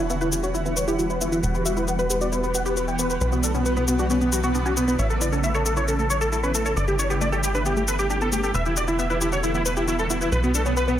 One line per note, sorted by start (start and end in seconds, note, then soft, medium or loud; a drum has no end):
0.00 1.41 E1 medium
0.10 0.17 B3 loud
0.10 0.18 E5 medium
0.10 shaker soft
0.21 0.29 E4 medium
0.21 0.29 B4 medium
0.21 shaker soft
0.32 0.40 E4 medium
0.32 0.43 G4 medium
0.32 shaker medium
0.43 0.51 F#4 medium
0.43 0.51 C#5 medium
0.43 shaker soft
0.54 0.65 E4 medium
0.54 0.62 E4 medium
0.54 shaker soft
0.66 0.73 B3 medium
0.66 0.73 E4 medium
0.66 shaker soft
0.76 0.84 B4 medium
0.76 0.84 C#5 medium
0.76 shaker medium
0.88 0.95 E4 medium
0.88 0.98 G4 loud
0.88 shaker soft
0.99 1.07 E4 medium
0.99 1.03 F#4 medium
0.99 shaker soft
1.10 1.17 E4 medium
1.10 1.18 B4 medium
1.10 shaker soft
1.21 1.32 B3 medium
1.21 1.29 E4 medium
1.21 shaker medium
1.32 1.40 E4 medium
1.32 1.40 B4 medium
1.32 shaker soft
1.43 3.19 E1 medium
1.43 1.51 B4 medium
1.43 1.51 F#5 medium
1.43 shaker soft
1.54 1.62 G4 medium
1.54 1.62 B4 medium
1.54 shaker soft
1.65 1.73 F#4 medium
1.65 1.73 E5 medium
1.65 shaker medium
1.77 1.87 E4 medium
1.77 1.84 B4 medium
1.77 shaker soft
1.88 1.95 B3 loud
1.88 1.96 F#5 medium
1.88 shaker soft
1.99 2.06 B4 loud
1.99 2.07 B4 medium
1.99 shaker soft
2.10 2.21 G4 medium
2.10 2.18 B4 medium
2.10 shaker medium
2.21 2.29 F#4 medium
2.21 2.29 D5 medium
2.21 shaker soft
2.32 2.43 E4 medium
2.32 2.40 B4 medium
2.32 shaker soft
2.43 2.51 B3 medium
2.43 2.51 B4 medium
2.43 shaker soft
2.54 2.62 B4 medium
2.54 2.62 F#5 medium
2.54 shaker medium
2.66 2.76 G4 loud
2.66 2.73 B4 medium
2.66 shaker soft
2.77 2.81 F#4 medium
2.77 2.85 B4 medium
2.77 shaker soft
2.88 2.95 E4 medium
2.88 2.96 G5 medium
2.88 shaker soft
2.99 3.10 B3 medium
2.99 3.07 B4 medium
2.99 shaker medium
3.10 3.17 B4 medium
3.10 3.18 B4 medium
3.10 shaker soft
3.21 4.97 B1 medium
3.21 3.29 B4 medium
3.21 shaker soft
3.32 3.40 B3 medium
3.32 3.40 F#4 medium
3.32 shaker soft
3.43 3.51 D4 medium
3.43 3.51 A4 medium
3.43 shaker medium
3.55 3.62 B3 medium
3.55 3.65 C#4 medium
3.55 shaker soft
3.66 3.73 B3 medium
3.66 3.73 B4 medium
3.66 shaker soft
3.77 3.84 B3 medium
3.77 3.84 B4 loud
3.77 shaker soft
3.88 3.96 B3 medium
3.88 3.98 F#4 medium
3.88 shaker medium
3.99 4.06 D4 medium
3.99 4.07 F#4 medium
3.99 shaker soft
4.10 4.18 B3 medium
4.10 4.21 C#4 medium
4.10 shaker soft
4.21 4.29 B3 medium
4.21 shaker soft
4.32 4.40 F#4 medium
4.32 4.40 B4 medium
4.32 shaker medium
4.43 4.51 B3 medium
4.43 4.54 F#4 loud
4.43 shaker soft
4.55 4.62 B3 medium
4.55 4.59 D4 medium
4.55 shaker soft
4.66 4.73 C#4 medium
4.66 4.73 F#4 medium
4.66 shaker soft
4.77 4.84 B3 medium
4.77 4.87 B3 medium
4.77 shaker medium
4.88 4.95 B3 medium
4.88 4.95 B4 medium
4.88 shaker soft
4.99 6.75 A1 medium
4.99 5.06 C#5 medium
4.99 5.07 E5 medium
4.99 shaker soft
5.10 5.18 A4 medium
5.10 shaker soft
5.21 5.29 E4 medium
5.21 5.29 D5 medium
5.21 shaker medium
5.32 5.43 C#4 medium
5.32 5.40 A4 medium
5.32 shaker soft
5.44 5.51 A3 medium
5.44 5.51 E5 medium
5.44 shaker soft
5.55 5.62 A4 medium
5.55 5.62 C#5 loud
5.55 shaker soft
5.66 5.76 A4 medium
5.66 5.73 A4 medium
5.66 shaker medium
5.77 5.84 E4 medium
5.77 5.85 C#5 medium
5.77 shaker soft
5.88 5.99 C#4 medium
5.88 5.96 A4 medium
5.88 shaker soft
5.99 6.06 A3 medium
5.99 6.07 A4 medium
5.99 shaker soft
6.10 6.18 C#5 medium
6.10 6.17 C#5 medium
6.10 shaker medium
6.21 6.29 A4 medium
6.21 6.32 A4 loud
6.21 shaker soft
6.32 6.37 E4 medium
6.32 6.40 A4 medium
6.32 shaker soft
6.43 6.51 C#4 medium
6.43 6.51 B4 medium
6.43 shaker soft
6.55 6.65 A3 medium
6.55 6.62 A4 medium
6.55 shaker medium
6.66 6.73 A4 medium
6.66 6.73 C#5 medium
6.66 shaker soft
6.77 8.52 G1 medium
6.77 6.84 A4 medium
6.77 6.84 D5 medium
6.77 shaker soft
6.88 6.95 G4 medium
6.88 6.96 G4 medium
6.88 shaker soft
6.99 7.06 D4 medium
6.99 7.07 C#5 medium
6.99 shaker medium
7.10 7.21 B3 medium
7.10 7.18 G4 medium
7.10 shaker soft
7.21 7.29 A3 loud
7.21 7.29 D5 medium
7.21 shaker soft
7.32 7.40 G4 medium
7.32 7.40 A4 loud
7.32 shaker soft
7.43 7.54 G4 medium
7.43 7.51 G4 medium
7.43 shaker medium
7.55 7.62 D4 medium
7.55 7.62 B4 medium
7.55 shaker soft
7.66 7.76 B3 medium
7.66 7.73 G4 medium
7.66 shaker soft
7.77 7.84 A3 medium
7.77 7.85 G4 medium
7.77 shaker soft
7.88 7.95 A4 medium
7.88 7.96 B4 loud
7.88 shaker medium
7.99 8.10 G4 loud
7.99 8.07 G4 medium
7.99 shaker soft
8.10 8.14 D4 medium
8.10 8.18 G4 medium
8.10 shaker soft
8.21 8.29 B3 medium
8.21 8.29 A4 medium
8.21 shaker soft
8.32 8.43 A3 medium
8.32 8.40 G4 medium
8.32 shaker medium
8.43 8.51 G4 medium
8.43 8.51 A4 medium
8.43 shaker soft
8.54 10.30 E1 medium
8.54 8.62 B4 medium
8.54 8.62 E5 loud
8.54 shaker soft
8.66 8.73 E4 medium
8.66 8.73 G4 medium
8.66 shaker soft
8.77 8.84 F#4 medium
8.77 8.85 D5 medium
8.77 shaker medium
8.88 8.98 E4 medium
8.88 8.96 E4 medium
8.88 shaker soft
8.99 9.06 B3 loud
8.99 9.07 E5 medium
8.99 shaker soft
9.10 9.18 E4 medium
9.10 9.17 B4 loud
9.10 shaker soft
9.21 9.29 E4 medium
9.21 9.32 G4 medium
9.21 shaker medium
9.32 9.40 F#4 medium
9.32 9.40 C#5 medium
9.32 shaker soft
9.43 9.54 E4 medium
9.43 9.51 E4 medium
9.43 shaker soft
9.55 9.62 B3 medium
9.55 9.62 E4 medium
9.55 shaker soft
9.66 9.73 B4 medium
9.66 shaker medium
9.77 9.84 E4 medium
9.77 9.87 G4 medium
9.77 shaker soft
9.88 9.96 E4 medium
9.88 9.92 F#4 medium
9.88 shaker soft
9.99 10.06 E4 medium
9.99 10.07 A4 medium
9.99 shaker soft
10.10 10.21 B3 medium
10.10 10.18 E4 medium
10.10 shaker medium
10.21 10.29 E4 medium
10.21 10.28 B4 medium
10.21 shaker soft
10.32 11.00 B1 medium
10.32 10.40 B4 medium
10.32 shaker soft
10.43 10.51 B3 medium
10.43 10.51 F#4 medium
10.43 shaker soft
10.55 10.62 D4 medium
10.55 10.62 A4 medium
10.55 shaker medium
10.66 10.74 B3 medium
10.66 10.76 C#4 loud
10.66 shaker soft
10.77 10.84 B3 medium
10.77 10.85 B4 medium
10.77 shaker soft
10.88 10.96 B3 medium
10.88 10.95 B4 loud
10.88 shaker soft